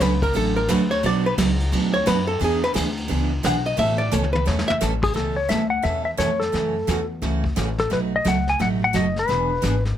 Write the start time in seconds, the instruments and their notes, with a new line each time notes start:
0.00 upright bass C#2, steel-string acoustic guitar D3 F#3 A3 C#4 F#4, hollow-body jazz guitar B4, kick, snare, hi-hat pedal, ride
0.22 hollow-body jazz guitar A#4, kick, ride
0.34 upright bass A1, steel-string acoustic guitar D3 F#3 A3 C#4 F#4, hollow-body jazz guitar A4, kick, ride
0.56 hollow-body jazz guitar A#4
0.68 upright bass D2, steel-string acoustic guitar D3 F#3 A3 C#4 F#4, hollow-body jazz guitar B4, kick, snare, hi-hat pedal, ride
0.91 hollow-body jazz guitar C#5, ride
1.03 upright bass B1, steel-string acoustic guitar B2 F#3 B3 D4 F#4, hollow-body jazz guitar D5, kick, ride
1.26 hollow-body jazz guitar B4
1.38 upright bass C#2, steel-string acoustic guitar B2 F#3 B3 D4 F#4, kick, snare, hi-hat pedal, ride
1.60 ride
1.72 upright bass D2, steel-string acoustic guitar B2 F#3 B3 D4 F#4, kick, ride
1.94 hollow-body jazz guitar C#5
2.06 upright bass F#2, steel-string acoustic guitar B2 F#3 B3 D4 F#4, hollow-body jazz guitar B4, kick, snare, hi-hat pedal, ride
2.27 hollow-body jazz guitar A4
2.39 upright bass E2, steel-string acoustic guitar E3 B3 D4 G#4, kick, ride
2.44 hollow-body jazz guitar G#4
2.63 hollow-body jazz guitar B4, snare
2.74 upright bass D2, steel-string acoustic guitar E3 B3 D4 G#4, kick, snare, hi-hat pedal, ride
2.97 ride
3.08 upright bass C#2, steel-string acoustic guitar E3 B3 D4 G#4, kick, ride
3.43 upright bass B1, steel-string acoustic guitar E3 B3 D4 G#4, hollow-body jazz guitar F#5, kick, snare, hi-hat pedal, ride
3.65 hollow-body jazz guitar D#5, ride
3.77 upright bass A1, steel-string acoustic guitar B2 E3 A3 C#4 A4, hollow-body jazz guitar E5, kick, ride
3.98 hollow-body jazz guitar D5
4.12 upright bass C#2, steel-string acoustic guitar B2 E3 A3 C#4 A4, hollow-body jazz guitar C#5, hi-hat pedal, high tom
4.24 high tom
4.33 hollow-body jazz guitar B4, high tom
4.45 upright bass E2, steel-string acoustic guitar B2 E3 A3 C#4 A4, hollow-body jazz guitar C#5, snare
4.59 snare
4.68 hollow-body jazz guitar E5, muted upright bass stroke, floor tom
4.81 upright bass A1, steel-string acoustic guitar B2 E3 A3 C#4 A4, snare, hi-hat pedal
5.03 electric slide guitar G#4, kick, crash
5.14 upright bass C#2, steel-string acoustic guitar B2 E3 A3 C#4 A4, electric slide guitar A4, brush sweep, kick, snare
5.36 electric slide guitar C#5
5.49 upright bass D2, steel-string acoustic guitar B2 E3 A3 C#4 A4, electric slide guitar E5, kick, snare, hi-hat pedal
5.70 electric slide guitar F#5
5.82 upright bass E2, steel-string acoustic guitar B2 E3 A3 C#4 A4, electric slide guitar E5, brush sweep, kick, snare
6.05 electric slide guitar E5
6.17 upright bass F2, steel-string acoustic guitar B2 E3 A3 C#4 A4, electric slide guitar C#5, kick, snare, hi-hat pedal
6.40 electric slide guitar A4, snare
6.52 upright bass F#2, steel-string acoustic guitar C#3 E3 A3 C#4 F#4, brush sweep, kick, snare
6.87 upright bass E2, steel-string acoustic guitar C#3 E3 A3 C#4 F#4, kick, snare, hi-hat pedal
7.22 upright bass C#2, steel-string acoustic guitar C#3 E3 A3 C#4 F#4, brush sweep, kick, snare
7.44 kick
7.56 upright bass A1, steel-string acoustic guitar C#3 E3 A3 C#4 F#4, kick, snare, hi-hat pedal
7.78 electric slide guitar A4, snare
7.90 upright bass B1, steel-string acoustic guitar B2 F#3 A3 D#4 F#4, electric slide guitar B4, brush sweep, kick, snare
8.16 electric slide guitar D#5
8.25 upright bass C#2, steel-string acoustic guitar B2 F#3 A3 D#4 F#4, electric slide guitar F#5, kick, snare, hi-hat pedal
8.48 electric slide guitar G#5, snare
8.59 upright bass A1, steel-string acoustic guitar B2 F#3 A3 D#4 F#4, electric slide guitar F#5, brush sweep, kick, snare
8.84 electric slide guitar F#5
8.93 upright bass F#1, steel-string acoustic guitar B2 F#3 A3 D#4 F#4, electric slide guitar D#5, kick, snare, hi-hat pedal
9.16 electric slide guitar B4, snare
9.28 upright bass E1, steel-string acoustic guitar E3 B3 D4 G#4, brush sweep, kick, snare
9.62 upright bass G#1, steel-string acoustic guitar E3 B3 D4 G#4, kick, snare, hi-hat pedal
9.85 snare